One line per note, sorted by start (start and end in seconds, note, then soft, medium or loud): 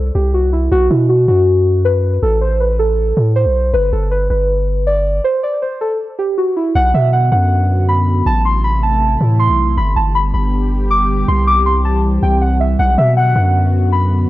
0.00 0.11 C2 loud
0.15 0.69 C2 loud
0.15 0.31 G4 medium
0.34 0.50 F#4 medium
0.53 0.69 E4 medium
0.72 0.90 B1 loud
0.72 0.88 F#4 loud
0.90 1.27 B2 loud
0.90 1.07 E4 medium
1.09 1.25 F#4 medium
1.28 2.19 F#2 loud
1.28 1.81 F#4 medium
1.85 2.20 B4 medium
2.23 3.13 A1 loud
2.23 2.39 A4 loud
2.41 2.57 C5 medium
2.60 2.76 B4 medium
2.79 3.32 A4 medium
3.17 3.47 A2 loud
3.36 3.71 C5 medium
3.45 3.72 B1 loud
3.73 3.92 G1 loud
3.73 3.90 B4 loud
3.92 4.29 G1 loud
3.92 4.09 A4 medium
4.11 4.27 B4 medium
4.30 5.21 G1 loud
4.30 4.83 B4 medium
4.87 5.22 D5 medium
5.24 5.41 C5 loud
5.43 5.59 D5 medium
5.62 5.78 C5 medium
5.81 5.97 A4 medium
6.19 6.35 G4 medium
6.38 6.54 F#4 medium
6.56 6.73 E4 medium
6.75 6.93 B1 loud
6.75 6.91 F#5 loud
6.94 7.30 B2 loud
6.94 7.10 E5 medium
7.13 7.29 F#5 medium
7.32 8.23 F#2 loud
7.32 7.85 F#5 medium
7.89 8.24 B5 medium
8.26 9.17 A1 loud
8.26 8.42 A5 loud
8.45 8.61 C6 medium
8.64 8.80 B5 medium
8.83 9.36 A5 medium
9.21 9.50 A2 loud
9.39 9.75 C6 loud
9.49 9.76 B1 loud
9.77 9.95 G1 loud
9.77 12.76 G4 loud
9.77 9.93 B5 loud
9.96 10.32 G1 loud
9.96 10.12 A5 medium
10.15 10.31 B5 medium
10.34 11.24 G1 loud
10.34 10.87 B5 medium
10.91 11.26 D6 medium
11.28 12.19 C2 loud
11.28 11.44 C6 loud
11.47 11.63 D6 medium
11.66 11.82 C6 medium
11.85 12.01 A5 medium
12.23 12.77 C2 loud
12.23 12.39 G5 medium
12.42 12.58 F#5 medium
12.60 12.76 E5 medium
12.79 12.97 B1 loud
12.79 12.95 F#5 loud
12.98 13.34 B2 loud
12.98 13.16 E5 medium
12.98 13.14 E5 medium
13.17 13.52 F#5 medium
13.17 13.33 F#5 medium
13.36 14.26 F#2 loud
13.36 13.89 F#5 medium
13.92 14.28 B5 medium